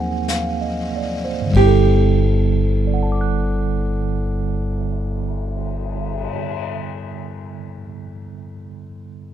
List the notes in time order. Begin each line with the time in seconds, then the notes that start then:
Already playing: D#2 F3 F#3 A#3 C4 D#4 G#4 A#4 C5 G#5
0.00 F#5
0.28 F5, snare, hi-hat pedal
0.61 D#5
0.96 D5
1.25 C5
1.41 G2
1.46 D3
1.51 G1 G3, kick, ride
1.56 B3 G4
1.61 E4
1.66 A4
2.45 cymbal swell
2.87 D5
2.94 F#5
3.03 A5
3.12 D6
3.21 F#6